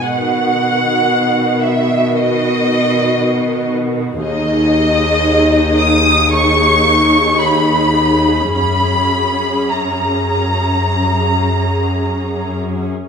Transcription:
0.05 B2 D#3 F#4 F#5
1.64 E5
2.17 D#5
4.24 D#2 D#4 G#4 D#5
5.80 D#6
6.34 C#6
7.41 B5
8.55 F#2 C#4 G#4 B5
9.72 A#5

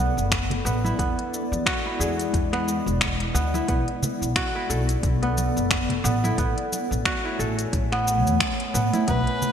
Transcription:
Already playing: B3 E4 F#4 A4 D5
0.17 F#1, cabasa
0.32 finger snap, kick, closed hi-hat, cabasa
0.50 closed hi-hat, low conga
0.65 A1 B3, cabasa
0.84 E4, high conga, cabasa
0.99 E2 G#3 B3 E4, kick, closed hi-hat, cabasa
1.19 closed hi-hat
1.34 cabasa
1.52 E2, cabasa
1.66 F#4, finger snap, kick, closed hi-hat, cabasa
1.85 E4
2.00 E2 G#4, cabasa
2.19 closed hi-hat, cabasa
2.34 E2, kick, closed hi-hat, cabasa
2.53 B3, finger snap, closed hi-hat
2.68 cabasa
2.86 E1, cabasa
3.01 finger snap, kick, closed hi-hat, cabasa
3.20 closed hi-hat
3.34 D2 B3, cabasa
3.54 E4, muted conga, cabasa
3.68 B1 B3 A4 D5, kick, closed hi-hat, cabasa
3.88 closed hi-hat
4.03 low conga, cabasa
4.22 B1, cabasa
4.36 F#4, finger snap, kick, closed hi-hat, cabasa
4.55 E4
4.69 B1 A4, cabasa
4.89 closed hi-hat, cabasa
5.03 B1, kick, closed hi-hat, cabasa
5.22 B3, closed hi-hat
5.37 muted conga, high conga, cabasa
5.56 F#1, cabasa
5.71 finger snap, kick, closed hi-hat, cabasa
5.90 closed hi-hat, low conga
6.04 A1 B3, cabasa
6.24 E4, high conga, cabasa
6.38 A1 A3 B3 C#5 G#5, kick, closed hi-hat, cabasa
6.58 closed hi-hat
6.72 high conga, cabasa
6.91 A1, cabasa
7.05 F#4, finger snap, kick, closed hi-hat, cabasa
7.25 E4
7.39 A1 A4, cabasa
7.59 closed hi-hat, cabasa
7.73 A1, kick, closed hi-hat, cabasa
7.92 B3, finger snap, closed hi-hat
8.08 cabasa
8.26 E2, cabasa
8.40 finger snap, kick, closed hi-hat, cabasa
8.60 closed hi-hat
8.74 A2 B3, cabasa
8.93 E4, closed hi-hat, muted conga, cabasa
9.07 B1 B3 A4 B4 D5, kick, closed hi-hat, cabasa
9.27 closed hi-hat
9.42 low conga, cabasa

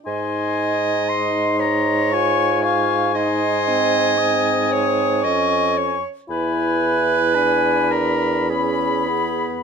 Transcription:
0.06 G#2 D#4 D#5 G#5 C6
1.07 C6
1.59 C#5 A#5
2.11 F4 G#5 C#6
2.63 F5 C#6
3.15 D#4 D#5 G#5 C6
3.68 C4
4.18 C4 D#6
4.72 C#5
5.23 F2 C#4 D#5 C#6
5.77 C#5
6.29 E2 E4 B4 G#5 B5
7.35 D4 G#5 B5
7.91 A#4 A#5
8.49 C#4 G#4 B5
9.08 B3

